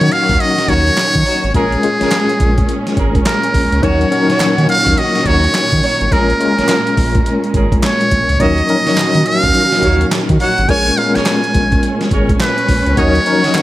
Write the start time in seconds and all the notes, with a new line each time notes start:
Already playing: A#2 D#3 F#3 C#4 D#4 F#4 A#4 C#5
0.01 D#3, closed hi-hat
0.12 F5, closed hi-hat
0.29 D#2, kick, closed hi-hat
0.40 D#5, closed hi-hat
0.58 snare, closed hi-hat
0.68 D#2 D#4 F#4 C#5, kick, closed hi-hat
0.87 closed hi-hat
0.97 snare, clap, closed hi-hat
1.15 D#3, kick, closed hi-hat
1.26 D#4 F#4 C#5, open hi-hat
1.44 G#1, closed hi-hat
1.54 A#1 G#3 C#4 F4 G#4 A#4, kick, closed hi-hat
1.72 closed hi-hat
1.83 G#3 C#4 F4 G#4, closed hi-hat
2.01 A#1 C#4 G#4 A#4, snare, closed hi-hat
2.11 snare, clap, closed hi-hat
2.29 closed hi-hat
2.40 A#1, kick, closed hi-hat
2.58 kick, closed hi-hat
2.69 closed hi-hat
2.87 snare, closed hi-hat
2.97 G#1 C#4 G#4 A#4, kick, closed hi-hat
3.15 kick, closed hi-hat
3.26 A#4, snare, clap, closed hi-hat
3.43 closed hi-hat
3.54 A#1, kick, open hi-hat
3.72 C#2, closed hi-hat
3.83 D#2 D#3 F#3 C#4 D#4 F#4 A#4 C#5, kick, closed hi-hat
4.01 closed hi-hat
4.11 F#3 C#4 D#4 A#4, closed hi-hat
4.29 D#3 D#4 F#4 C#5, snare, closed hi-hat
4.40 D#3, snare, clap, closed hi-hat
4.58 D#3, closed hi-hat
4.69 F5, closed hi-hat
4.86 D#2, kick, closed hi-hat
4.98 D#5, closed hi-hat
5.15 snare, closed hi-hat
5.26 D#2 D#4 F#4 C#5, kick, closed hi-hat
5.44 closed hi-hat
5.54 snare, clap, closed hi-hat
5.72 D#3, kick, closed hi-hat
5.83 D#4 F#4 C#5, open hi-hat
6.01 G#1, closed hi-hat
6.11 A#1 G#3 C#4 F4 G#4 A#4, kick, closed hi-hat
6.30 closed hi-hat
6.40 G#3 C#4 F4 A#4, closed hi-hat
6.58 A#1 C#4 G#4 A#4, snare, closed hi-hat
6.69 snare, clap, closed hi-hat
6.87 closed hi-hat
6.97 A#1, kick, open hi-hat
7.15 kick, closed hi-hat
7.26 closed hi-hat
7.44 closed hi-hat
7.54 G#1 C#4 G#4 A#4, kick, closed hi-hat
7.72 kick, closed hi-hat
7.83 C#5, snare, clap, closed hi-hat
8.01 closed hi-hat
8.11 A#1, kick, closed hi-hat
8.29 C#2, closed hi-hat
8.40 D#2 D#3 F#3 C#4 D#4 F#4 A#4 C#5 D#5, kick, closed hi-hat
8.58 closed hi-hat
8.69 F3 C#4 D#4 A#4, closed hi-hat
8.75 F#3
8.86 D#3 D#4 F#4 C#5, snare, closed hi-hat
8.97 D#3, snare, clap, closed hi-hat
9.15 D#3, closed hi-hat
9.26 F5, closed hi-hat
9.43 D#2, kick, closed hi-hat
9.54 closed hi-hat
9.72 snare, closed hi-hat
9.83 D#2 D#4 F#4 C#5, kick, closed hi-hat
10.01 closed hi-hat
10.12 snare, clap, closed hi-hat
10.29 D#3, kick, closed hi-hat
10.40 D#4 F#4 C#5 F#5, open hi-hat
10.58 G#1, closed hi-hat
10.69 A#1 G#3 C#4 F4 G#4 A#4 C#5 G#5, kick, closed hi-hat
10.87 closed hi-hat
10.97 G#3 B3 F4 A#4 F5, closed hi-hat
11.05 C#4
11.15 A#1 G#4 A#4 C#5 G#5, snare, closed hi-hat
11.26 snare, clap, closed hi-hat
11.44 closed hi-hat
11.54 A#1, kick, closed hi-hat
11.72 kick, closed hi-hat
11.83 closed hi-hat
12.01 snare, closed hi-hat
12.11 G#1 G#4 A#4 C#5, kick, closed hi-hat
12.29 kick, closed hi-hat
12.40 B4, snare, clap, closed hi-hat
12.58 closed hi-hat
12.69 A#1, kick, open hi-hat
12.86 C#2, closed hi-hat
12.97 D#2 D#3 F#3 A#3 C#4 D#4 F#4 A#4 C#5 D#5, kick, closed hi-hat
13.15 closed hi-hat
13.26 F3 C#4 D#4 A#4, closed hi-hat
13.32 F#3
13.44 D#3 F#4 C#5 D#5, snare, closed hi-hat
13.54 D#3, snare, clap, closed hi-hat